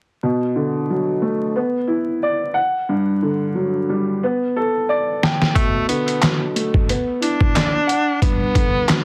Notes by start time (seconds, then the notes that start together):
0.23 B2
0.56 D3
0.90 F#3
1.22 A3
1.56 B3
1.88 E4
2.23 D5
2.54 F#5
2.89 G2
3.22 D3
3.55 F#3
3.89 G3
4.23 B3
4.56 A4
4.89 D5
5.23 G5, snare
5.42 snare
5.55 B2 A3, kick, closed hi-hat
5.88 D3 B3, closed hi-hat
6.08 closed hi-hat
6.22 F#3, snare, clap, closed hi-hat
6.55 A3, closed hi-hat
6.74 kick
6.89 B3, closed hi-hat
7.21 D4 E4, closed hi-hat
7.41 kick
7.56 D5, snare, clap, closed hi-hat
7.87 F#5, closed hi-hat
8.22 G2 B3, kick, closed hi-hat
8.55 D3, kick, closed hi-hat
8.88 F#3, snare, clap, closed hi-hat